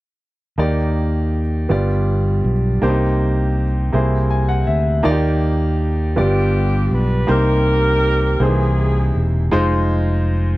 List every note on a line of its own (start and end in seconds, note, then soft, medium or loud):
0.58 1.66 D#2 medium
0.58 1.67 D#3 soft
0.58 1.40 A#3 medium
0.58 1.41 D#4 medium
0.58 1.41 G4 medium
0.58 1.41 D5 medium
1.69 2.41 G1 medium
1.69 2.78 G2 soft
1.69 2.52 B3 medium
1.69 2.52 F4 soft
1.69 2.52 G4 soft
1.69 2.53 D5 medium
2.44 2.79 B1 medium
2.82 3.90 C2 medium
2.82 3.90 C3 medium
2.82 3.64 A#3 medium
2.82 2.88 D4 soft
2.82 3.64 G4 medium
2.82 3.65 C5 medium
2.89 3.67 D#4 medium
3.92 4.64 C2 medium
3.92 5.01 C3 medium
3.92 4.75 A#3 medium
3.92 4.75 E4 medium
3.92 4.76 G#4 medium
3.92 4.76 C5 medium
4.30 4.48 G#5 medium
4.49 4.66 F#5 medium
4.67 5.02 D2 medium
4.67 5.02 E5 medium
5.03 6.19 D#2 medium
5.03 6.12 D#3 medium
5.03 5.86 A#3 medium
5.03 5.86 D#4 medium
5.03 5.11 F4 medium
5.03 5.87 D5 medium
5.11 5.90 G4 medium
6.16 6.88 G1 medium
6.16 7.24 G2 medium
6.16 6.98 B3 medium
6.16 7.25 B3 medium
6.16 7.25 D4 medium
6.16 6.98 F4 soft
6.16 6.99 G4 soft
6.16 6.88 G4 medium
6.16 6.99 D5 medium
6.91 7.25 B1 medium
6.91 7.29 B4 medium
7.27 8.36 C2 medium
7.27 8.36 C3 medium
7.27 8.10 A#3 medium
7.27 8.10 D#4 medium
7.27 8.10 G4 medium
7.27 8.10 C5 medium
7.32 8.38 D#4 medium
7.32 8.38 G4 medium
7.32 8.42 A#4 loud
8.40 9.10 C2 medium
8.40 9.48 C3 soft
8.40 9.22 A#3 medium
8.40 8.47 D#4 soft
8.40 9.49 D#4 soft
8.40 9.49 E4 soft
8.40 9.22 G#4 soft
8.40 9.23 C5 medium
8.44 9.25 E3 medium
8.44 9.26 G#4 medium
9.15 9.49 E1 medium
9.51 10.57 F1 medium
9.51 10.33 G#3 medium
9.51 10.34 D#4 medium
9.51 10.34 F4 medium
9.51 10.34 C5 medium